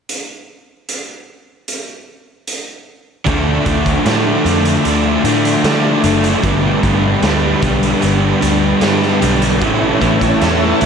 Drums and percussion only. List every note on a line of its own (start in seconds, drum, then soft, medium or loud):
0.09 closed hi-hat medium
0.89 closed hi-hat soft
1.68 closed hi-hat medium
2.47 closed hi-hat soft
3.26 kick loud
3.26 closed hi-hat medium
3.66 kick medium
3.66 closed hi-hat medium
3.86 kick medium
3.86 closed hi-hat medium
4.06 snare loud
4.06 closed hi-hat medium
4.46 closed hi-hat medium
4.65 closed hi-hat medium
4.85 closed hi-hat medium
5.25 closed hi-hat medium
5.45 closed hi-hat medium
5.64 snare medium
5.64 closed hi-hat medium
6.04 closed hi-hat medium
6.24 closed hi-hat medium
6.43 kick loud
6.43 closed hi-hat medium
6.83 kick medium
6.83 closed hi-hat medium
7.23 snare medium
7.23 closed hi-hat medium
7.62 kick medium
7.62 closed hi-hat medium
7.83 closed hi-hat medium
8.02 closed hi-hat soft
8.42 closed hi-hat medium
8.81 snare loud
8.81 closed hi-hat medium
9.03 snare soft
9.22 closed hi-hat medium
9.42 closed hi-hat medium
9.62 kick loud
9.62 closed hi-hat medium
10.02 kick medium
10.02 closed hi-hat medium
10.21 kick medium
10.21 closed hi-hat medium
10.41 snare medium
10.41 closed hi-hat medium
10.81 closed hi-hat medium